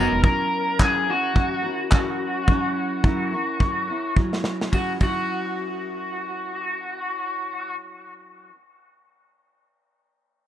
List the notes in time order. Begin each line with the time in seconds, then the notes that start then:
Already playing: B3 D#4 F#4 A#4 B4
0.00 F#3
0.12 E1
0.22 F#3 C#4 E4 A#4, kick
0.79 F#3 C#4 E4 G#4 A#4, kick, clap
1.06 C#4 E4 A#4
1.10 F#4
1.33 F#3 C#4 E4, kick
1.38 A#4
1.62 C#4 E4 A#4
1.90 F#3 C#4 E4 A#4, kick, clap
2.48 F#3 C#4 E4 A#4, kick
3.03 F#3 C#4 E4 A#4, kick
3.31 C#4 E4 A#4
3.59 F#3 C#4 E4 A#4, kick
3.87 C#4 E4 A#4
4.16 F#3 C#4 E4 A#4, kick
4.33 snare
4.44 snare
4.61 snare
4.72 F#3 C#4 E4 F#4, kick, ride
4.77 A#4
4.99 F#3 C#4, kick, ride
5.03 E4 F#4 A#4